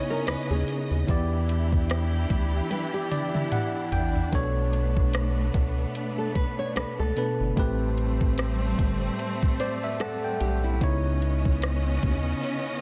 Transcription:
0.00 1.05 C#3 medium
0.00 1.08 C#3 medium
0.00 1.05 B3 medium
0.00 1.07 B3 medium
0.00 1.05 C#4 medium
0.00 1.09 D#4 medium
0.00 1.08 E4 medium
0.00 1.09 C#5 medium
0.00 1.05 D#5 medium
0.10 0.26 A#4 medium
0.27 0.37 D#2 soft
0.27 0.49 B4 medium
0.27 cross-stick loud
0.27 closed hi-hat medium
0.50 0.64 D#2 medium
0.50 1.05 G#4 medium
0.68 closed hi-hat medium
0.91 1.04 D#2 medium
1.07 2.26 E2 loud
1.07 4.28 E3 medium
1.07 4.29 E3 medium
1.07 4.29 B3 medium
1.07 7.53 D4 medium
1.07 4.30 E4 medium
1.07 4.29 E4 medium
1.07 4.30 G4 medium
1.07 4.29 G4 medium
1.07 3.10 D5 medium
1.07 kick loud
1.07 closed hi-hat medium
1.49 closed hi-hat medium
1.72 kick medium
1.90 cross-stick loud
1.90 closed hi-hat medium
2.30 2.62 D2 medium
2.30 kick medium
2.30 closed hi-hat medium
2.70 2.93 B4 medium
2.70 closed hi-hat medium
2.70 high tom medium
2.94 3.32 G4 medium
3.11 3.49 D5 medium
3.11 closed hi-hat medium
3.11 mid tom medium
3.34 4.29 E4 medium
3.34 mid tom medium
3.52 3.90 F#5 medium
3.52 closed hi-hat medium
3.52 mid tom medium
3.92 4.23 A1 medium
3.92 4.30 G5 medium
3.92 closed hi-hat medium
3.92 floor tom medium
4.16 floor tom medium
4.32 5.50 B1 loud
4.32 7.12 B2 medium
4.32 7.54 A3 medium
4.32 7.12 B3 medium
4.32 7.54 B3 medium
4.32 7.13 D4 medium
4.32 7.13 A4 medium
4.32 7.14 C#5 medium
4.32 kick loud
4.32 closed hi-hat medium
4.73 closed hi-hat medium
4.97 kick medium
5.13 cross-stick loud
5.13 closed hi-hat medium
5.54 5.86 C#2 medium
5.54 kick medium
5.54 closed hi-hat medium
5.95 closed hi-hat medium
6.18 6.34 A4 medium
6.35 6.58 B4 medium
6.35 kick loud
6.35 closed hi-hat medium
6.59 6.75 C#5 medium
6.76 6.85 C#2 soft
6.76 6.98 B4 medium
6.76 cross-stick loud
6.76 closed hi-hat medium
6.99 7.13 C#2 loud
6.99 7.54 A4 medium
7.16 7.57 B2 medium
7.16 7.57 B3 soft
7.16 7.57 D4 soft
7.16 7.58 A4 soft
7.16 7.58 B4 medium
7.16 closed hi-hat medium
7.40 7.53 G1 medium
7.56 8.75 A1 loud
7.56 10.77 A2 medium
7.56 10.78 G3 medium
7.56 10.77 A3 medium
7.56 10.78 A3 medium
7.56 10.78 C4 medium
7.56 10.78 G4 medium
7.56 10.79 B4 medium
7.56 kick loud
7.56 closed hi-hat medium
7.98 closed hi-hat medium
8.21 kick medium
8.38 cross-stick loud
8.38 closed hi-hat medium
8.79 9.10 G1 medium
8.79 kick medium
8.79 closed hi-hat medium
9.19 closed hi-hat medium
9.43 kick medium
9.60 9.83 C5 medium
9.60 9.82 D5 medium
9.60 closed hi-hat medium
9.83 9.99 B4 medium
9.83 9.99 E5 medium
10.00 10.39 A4 medium
10.00 10.22 F#5 medium
10.00 cross-stick loud
10.00 closed hi-hat medium
10.24 10.78 G5 medium
10.40 10.83 B1 medium
10.40 10.63 G4 medium
10.40 closed hi-hat medium
10.64 11.03 E4 medium
10.80 11.99 C#2 loud
10.80 12.81 C#3 medium
10.80 12.81 B3 medium
10.80 12.81 C#4 medium
10.80 12.81 D#4 medium
10.80 12.81 E4 medium
10.80 12.81 C#5 medium
10.80 12.81 D#5 medium
10.80 kick loud
10.80 closed hi-hat medium
11.22 closed hi-hat medium
11.45 kick medium
11.62 cross-stick loud
11.62 closed hi-hat medium
12.03 12.34 D#2 medium
12.03 kick medium
12.03 closed hi-hat medium
12.43 closed hi-hat medium

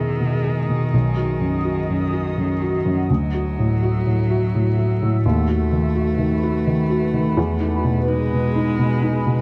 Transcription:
0.00 0.89 E2 medium
0.00 0.20 B2 soft
0.00 3.12 D#3 medium
0.00 0.89 G#3 medium
0.00 0.44 G#4 soft
0.00 0.89 G#4 medium
0.00 3.05 D#5 medium
0.20 0.59 B2 soft
0.44 0.83 G#4 soft
0.69 0.93 B2 soft
0.94 3.05 B1 soft
0.94 5.22 A3 medium
0.94 5.23 F#4 medium
1.17 1.55 F#4 soft
1.40 1.79 F#2 soft
1.65 2.03 F#4 soft
1.90 2.28 F#2 soft
2.13 2.51 F#4 soft
2.37 2.75 F#2 soft
2.62 3.00 F#4 soft
2.85 3.09 F#2 soft
3.10 5.20 D2 medium
3.10 5.24 F#3 medium
3.10 5.25 E5 medium
3.34 3.72 F#4 soft
3.59 3.96 A2 soft
3.83 4.20 F#4 soft
4.07 4.44 A2 soft
4.31 4.68 F#4 soft
4.54 4.92 A2 soft
4.78 5.15 F#4 soft
5.02 5.25 A2 soft
5.23 7.34 D#2 medium
5.23 7.33 A3 medium
5.23 8.09 A3 medium
5.23 7.33 F#4 medium
5.23 9.41 B4 medium
5.49 5.86 F#4 soft
5.72 6.10 D#3 soft
5.95 6.33 F#4 soft
6.18 6.56 D#3 soft
6.43 6.81 F#4 medium
6.67 7.04 D#3 soft
6.90 7.28 F#4 medium
7.13 7.37 D#3 soft
7.35 9.41 E2 medium
7.35 9.41 D#4 medium
7.35 9.41 G#4 medium
7.60 7.98 D#4 medium
7.84 8.22 B2 soft
8.08 9.41 G#3 medium
8.08 8.46 D#4 medium
8.33 8.70 B2 soft
8.56 8.93 D#4 medium
8.79 9.17 B2 medium
9.02 9.40 D#4 medium
9.26 9.41 B2 medium

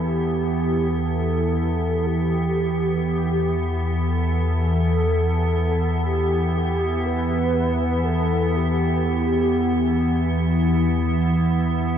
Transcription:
0.00 11.98 E2 medium
0.00 11.98 E3 medium
0.00 11.98 B3 medium
0.00 1.07 G4 medium
1.05 2.08 A4 medium
2.06 3.05 G4 loud
3.06 3.76 G4 medium
4.05 6.07 A4 medium
6.06 7.07 G4 loud
7.06 8.06 B4 loud
8.05 8.58 A4 loud
8.57 10.55 G4 medium

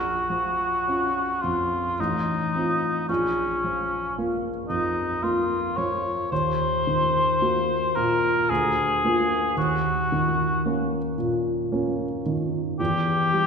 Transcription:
0.00 1.94 A#1 soft
0.00 1.43 F#4 soft
0.30 1.21 F3 soft
0.88 1.39 C#4 soft
0.88 1.40 F4 soft
1.42 1.99 F2 soft
1.42 2.02 F4 soft
2.00 3.06 A1 soft
2.00 3.08 D#4 soft
2.56 3.06 C4 soft
2.56 3.06 F4 soft
3.09 6.28 A#1 soft
3.09 4.14 C#4 soft
3.64 4.49 F3 soft
4.18 4.66 A#3 soft
4.18 4.66 F4 soft
4.69 5.55 F2 soft
4.69 5.24 D#4 soft
5.23 5.73 A#3 soft
5.23 5.78 F4 soft
5.23 5.73 F4 soft
5.77 6.32 F3 soft
5.77 6.31 C#5 soft
6.32 8.46 D#2 soft
6.32 7.97 C5 medium
6.87 7.74 D#3 soft
7.42 7.92 A#3 soft
7.42 7.92 F#4 soft
7.95 8.50 A#2 soft
7.95 8.51 A#4 soft
8.49 9.54 D2 soft
8.49 9.57 G#4 medium
9.05 9.53 A#3 soft
9.05 9.53 F4 soft
9.57 12.76 D#2 soft
9.57 10.62 F#4 soft
10.12 10.97 D#3 soft
10.66 11.14 A#3 soft
10.66 11.15 C#4 soft
11.18 12.04 A#2 soft
11.72 12.22 A#3 soft
11.72 12.22 C#4 soft
12.26 12.80 D#3 soft
12.80 13.47 E2 soft
12.80 13.47 G4 medium
13.33 13.47 G3 soft

